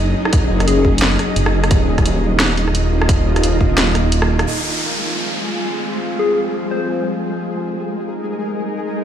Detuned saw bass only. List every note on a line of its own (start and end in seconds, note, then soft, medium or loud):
0.00 0.15 F#1 loud
0.50 1.18 F#1 medium
1.36 1.70 F#1 loud
1.71 2.39 D#1 loud
2.40 2.90 D#1 loud
2.91 3.42 D#1 loud
3.43 3.77 D#1 loud
3.78 4.46 D#1 loud